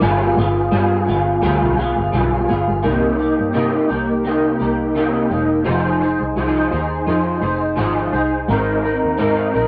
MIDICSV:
0, 0, Header, 1, 3, 480
1, 0, Start_track
1, 0, Key_signature, -3, "minor"
1, 0, Tempo, 705882
1, 10, Time_signature, 4, 2, 24, 8
1, 6580, End_track
2, 0, Start_track
2, 0, Title_t, "Clean electric guitar"
2, 0, Program_c, 0, 27
2, 4, Note_on_c, 0, 55, 86
2, 9, Note_on_c, 0, 59, 92
2, 11, Note_on_c, 0, 65, 100
2, 16, Note_on_c, 0, 68, 112
2, 241, Note_off_c, 0, 68, 0
2, 247, Note_off_c, 0, 55, 0
2, 249, Note_off_c, 0, 59, 0
2, 249, Note_on_c, 0, 68, 64
2, 250, Note_off_c, 0, 65, 0
2, 258, Note_on_c, 0, 65, 57
2, 264, Note_on_c, 0, 59, 52
2, 481, Note_off_c, 0, 59, 0
2, 485, Note_on_c, 0, 55, 70
2, 486, Note_off_c, 0, 65, 0
2, 489, Note_off_c, 0, 68, 0
2, 489, Note_on_c, 0, 59, 73
2, 495, Note_on_c, 0, 65, 70
2, 497, Note_on_c, 0, 68, 74
2, 718, Note_off_c, 0, 68, 0
2, 726, Note_on_c, 0, 68, 61
2, 727, Note_off_c, 0, 55, 0
2, 729, Note_off_c, 0, 59, 0
2, 730, Note_off_c, 0, 65, 0
2, 738, Note_on_c, 0, 65, 56
2, 742, Note_on_c, 0, 59, 47
2, 963, Note_off_c, 0, 59, 0
2, 965, Note_on_c, 0, 55, 86
2, 966, Note_off_c, 0, 65, 0
2, 967, Note_off_c, 0, 68, 0
2, 971, Note_on_c, 0, 59, 91
2, 974, Note_on_c, 0, 65, 86
2, 975, Note_on_c, 0, 68, 99
2, 1197, Note_off_c, 0, 68, 0
2, 1205, Note_on_c, 0, 68, 63
2, 1207, Note_off_c, 0, 55, 0
2, 1208, Note_off_c, 0, 65, 0
2, 1210, Note_off_c, 0, 59, 0
2, 1216, Note_on_c, 0, 65, 50
2, 1223, Note_on_c, 0, 59, 49
2, 1443, Note_off_c, 0, 59, 0
2, 1444, Note_on_c, 0, 55, 67
2, 1445, Note_off_c, 0, 65, 0
2, 1447, Note_off_c, 0, 68, 0
2, 1451, Note_on_c, 0, 59, 75
2, 1454, Note_on_c, 0, 65, 66
2, 1459, Note_on_c, 0, 68, 67
2, 1678, Note_off_c, 0, 68, 0
2, 1686, Note_off_c, 0, 55, 0
2, 1686, Note_off_c, 0, 65, 0
2, 1686, Note_on_c, 0, 68, 57
2, 1690, Note_off_c, 0, 59, 0
2, 1694, Note_on_c, 0, 65, 53
2, 1701, Note_on_c, 0, 59, 51
2, 1919, Note_off_c, 0, 59, 0
2, 1921, Note_on_c, 0, 48, 69
2, 1922, Note_on_c, 0, 58, 84
2, 1924, Note_off_c, 0, 65, 0
2, 1927, Note_off_c, 0, 68, 0
2, 1927, Note_on_c, 0, 63, 80
2, 1930, Note_on_c, 0, 67, 77
2, 2158, Note_off_c, 0, 67, 0
2, 2164, Note_off_c, 0, 48, 0
2, 2164, Note_off_c, 0, 63, 0
2, 2165, Note_off_c, 0, 58, 0
2, 2166, Note_on_c, 0, 67, 53
2, 2172, Note_on_c, 0, 63, 52
2, 2181, Note_on_c, 0, 58, 43
2, 2399, Note_off_c, 0, 58, 0
2, 2401, Note_off_c, 0, 63, 0
2, 2401, Note_on_c, 0, 48, 74
2, 2404, Note_off_c, 0, 67, 0
2, 2407, Note_on_c, 0, 58, 82
2, 2409, Note_on_c, 0, 63, 84
2, 2413, Note_on_c, 0, 67, 76
2, 2638, Note_off_c, 0, 67, 0
2, 2645, Note_off_c, 0, 48, 0
2, 2645, Note_off_c, 0, 63, 0
2, 2646, Note_on_c, 0, 67, 58
2, 2648, Note_off_c, 0, 58, 0
2, 2653, Note_on_c, 0, 63, 48
2, 2661, Note_on_c, 0, 58, 45
2, 2880, Note_off_c, 0, 58, 0
2, 2882, Note_on_c, 0, 48, 59
2, 2887, Note_off_c, 0, 67, 0
2, 2888, Note_on_c, 0, 58, 64
2, 2889, Note_off_c, 0, 63, 0
2, 2897, Note_on_c, 0, 63, 61
2, 2899, Note_on_c, 0, 67, 69
2, 3113, Note_off_c, 0, 67, 0
2, 3121, Note_off_c, 0, 63, 0
2, 3122, Note_on_c, 0, 67, 57
2, 3125, Note_off_c, 0, 48, 0
2, 3128, Note_off_c, 0, 58, 0
2, 3129, Note_on_c, 0, 63, 43
2, 3137, Note_on_c, 0, 58, 45
2, 3362, Note_off_c, 0, 58, 0
2, 3364, Note_on_c, 0, 48, 83
2, 3365, Note_off_c, 0, 67, 0
2, 3367, Note_off_c, 0, 63, 0
2, 3370, Note_on_c, 0, 58, 82
2, 3375, Note_on_c, 0, 63, 91
2, 3375, Note_on_c, 0, 67, 82
2, 3594, Note_off_c, 0, 67, 0
2, 3601, Note_off_c, 0, 63, 0
2, 3602, Note_on_c, 0, 67, 53
2, 3606, Note_off_c, 0, 48, 0
2, 3607, Note_off_c, 0, 58, 0
2, 3609, Note_on_c, 0, 63, 51
2, 3615, Note_on_c, 0, 58, 44
2, 3832, Note_off_c, 0, 63, 0
2, 3838, Note_on_c, 0, 53, 87
2, 3840, Note_on_c, 0, 63, 81
2, 3844, Note_off_c, 0, 67, 0
2, 3847, Note_on_c, 0, 68, 84
2, 3847, Note_on_c, 0, 72, 92
2, 3852, Note_off_c, 0, 58, 0
2, 4077, Note_off_c, 0, 72, 0
2, 4083, Note_off_c, 0, 53, 0
2, 4084, Note_off_c, 0, 63, 0
2, 4085, Note_off_c, 0, 68, 0
2, 4085, Note_on_c, 0, 72, 54
2, 4093, Note_on_c, 0, 68, 48
2, 4099, Note_on_c, 0, 63, 45
2, 4322, Note_off_c, 0, 63, 0
2, 4326, Note_off_c, 0, 68, 0
2, 4327, Note_off_c, 0, 72, 0
2, 4327, Note_on_c, 0, 53, 79
2, 4330, Note_on_c, 0, 63, 80
2, 4335, Note_on_c, 0, 68, 86
2, 4336, Note_on_c, 0, 72, 87
2, 4558, Note_off_c, 0, 72, 0
2, 4561, Note_off_c, 0, 68, 0
2, 4566, Note_on_c, 0, 72, 58
2, 4567, Note_off_c, 0, 53, 0
2, 4569, Note_off_c, 0, 63, 0
2, 4570, Note_on_c, 0, 68, 58
2, 4581, Note_on_c, 0, 63, 46
2, 4800, Note_off_c, 0, 63, 0
2, 4804, Note_on_c, 0, 53, 52
2, 4806, Note_off_c, 0, 68, 0
2, 4807, Note_off_c, 0, 72, 0
2, 4808, Note_on_c, 0, 63, 63
2, 4814, Note_on_c, 0, 68, 67
2, 4818, Note_on_c, 0, 72, 68
2, 5036, Note_off_c, 0, 72, 0
2, 5044, Note_off_c, 0, 68, 0
2, 5044, Note_on_c, 0, 72, 59
2, 5046, Note_off_c, 0, 53, 0
2, 5048, Note_off_c, 0, 63, 0
2, 5052, Note_on_c, 0, 68, 45
2, 5058, Note_on_c, 0, 63, 46
2, 5276, Note_off_c, 0, 63, 0
2, 5277, Note_on_c, 0, 53, 75
2, 5279, Note_off_c, 0, 68, 0
2, 5284, Note_on_c, 0, 63, 75
2, 5285, Note_off_c, 0, 72, 0
2, 5287, Note_on_c, 0, 68, 90
2, 5293, Note_on_c, 0, 72, 86
2, 5517, Note_off_c, 0, 72, 0
2, 5523, Note_off_c, 0, 53, 0
2, 5523, Note_off_c, 0, 68, 0
2, 5525, Note_on_c, 0, 72, 57
2, 5526, Note_off_c, 0, 63, 0
2, 5531, Note_on_c, 0, 68, 50
2, 5540, Note_on_c, 0, 63, 47
2, 5767, Note_off_c, 0, 72, 0
2, 5770, Note_off_c, 0, 68, 0
2, 5770, Note_on_c, 0, 56, 84
2, 5771, Note_off_c, 0, 63, 0
2, 5773, Note_on_c, 0, 60, 82
2, 5779, Note_on_c, 0, 63, 84
2, 5781, Note_on_c, 0, 70, 79
2, 5998, Note_off_c, 0, 70, 0
2, 6007, Note_off_c, 0, 63, 0
2, 6007, Note_on_c, 0, 70, 57
2, 6009, Note_off_c, 0, 56, 0
2, 6011, Note_off_c, 0, 60, 0
2, 6015, Note_on_c, 0, 63, 53
2, 6021, Note_on_c, 0, 60, 47
2, 6234, Note_off_c, 0, 60, 0
2, 6238, Note_off_c, 0, 63, 0
2, 6238, Note_on_c, 0, 56, 72
2, 6240, Note_off_c, 0, 70, 0
2, 6242, Note_on_c, 0, 60, 85
2, 6246, Note_on_c, 0, 63, 86
2, 6249, Note_on_c, 0, 70, 93
2, 6478, Note_off_c, 0, 70, 0
2, 6483, Note_off_c, 0, 56, 0
2, 6485, Note_off_c, 0, 60, 0
2, 6485, Note_off_c, 0, 63, 0
2, 6486, Note_on_c, 0, 70, 56
2, 6494, Note_on_c, 0, 63, 54
2, 6501, Note_on_c, 0, 60, 49
2, 6580, Note_off_c, 0, 60, 0
2, 6580, Note_off_c, 0, 63, 0
2, 6580, Note_off_c, 0, 70, 0
2, 6580, End_track
3, 0, Start_track
3, 0, Title_t, "Double bass"
3, 0, Program_c, 1, 43
3, 13, Note_on_c, 1, 31, 107
3, 204, Note_off_c, 1, 31, 0
3, 252, Note_on_c, 1, 31, 100
3, 443, Note_off_c, 1, 31, 0
3, 487, Note_on_c, 1, 43, 106
3, 680, Note_off_c, 1, 43, 0
3, 733, Note_on_c, 1, 31, 97
3, 924, Note_off_c, 1, 31, 0
3, 973, Note_on_c, 1, 38, 102
3, 1077, Note_off_c, 1, 38, 0
3, 1101, Note_on_c, 1, 35, 82
3, 1187, Note_off_c, 1, 35, 0
3, 1339, Note_on_c, 1, 31, 82
3, 1426, Note_off_c, 1, 31, 0
3, 1447, Note_on_c, 1, 35, 96
3, 1553, Note_off_c, 1, 35, 0
3, 1690, Note_on_c, 1, 31, 79
3, 1795, Note_off_c, 1, 31, 0
3, 1820, Note_on_c, 1, 31, 84
3, 1907, Note_off_c, 1, 31, 0
3, 1932, Note_on_c, 1, 36, 102
3, 2228, Note_off_c, 1, 36, 0
3, 2304, Note_on_c, 1, 43, 72
3, 2389, Note_off_c, 1, 43, 0
3, 2409, Note_on_c, 1, 48, 95
3, 2601, Note_off_c, 1, 48, 0
3, 2649, Note_on_c, 1, 36, 78
3, 3033, Note_off_c, 1, 36, 0
3, 3126, Note_on_c, 1, 36, 69
3, 3511, Note_off_c, 1, 36, 0
3, 3605, Note_on_c, 1, 28, 84
3, 3798, Note_off_c, 1, 28, 0
3, 3844, Note_on_c, 1, 29, 95
3, 4143, Note_off_c, 1, 29, 0
3, 4213, Note_on_c, 1, 36, 74
3, 4302, Note_off_c, 1, 36, 0
3, 4322, Note_on_c, 1, 36, 87
3, 4516, Note_off_c, 1, 36, 0
3, 4564, Note_on_c, 1, 39, 84
3, 4758, Note_off_c, 1, 39, 0
3, 4804, Note_on_c, 1, 41, 85
3, 4998, Note_off_c, 1, 41, 0
3, 5041, Note_on_c, 1, 29, 75
3, 5278, Note_off_c, 1, 29, 0
3, 5282, Note_on_c, 1, 32, 79
3, 5477, Note_off_c, 1, 32, 0
3, 5524, Note_on_c, 1, 36, 73
3, 5718, Note_off_c, 1, 36, 0
3, 5768, Note_on_c, 1, 32, 106
3, 6066, Note_off_c, 1, 32, 0
3, 6138, Note_on_c, 1, 39, 73
3, 6225, Note_off_c, 1, 39, 0
3, 6250, Note_on_c, 1, 44, 91
3, 6441, Note_off_c, 1, 44, 0
3, 6488, Note_on_c, 1, 34, 81
3, 6580, Note_off_c, 1, 34, 0
3, 6580, End_track
0, 0, End_of_file